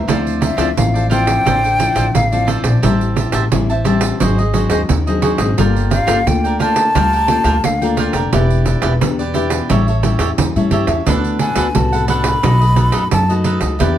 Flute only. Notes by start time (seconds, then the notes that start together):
0.42 E5
0.78 F5
1.11 G5
2.16 F5
5.92 F5
6.27 G5
6.61 A5
7.65 F5
11.40 G#5
11.76 A5
12.09 B5
13.13 A5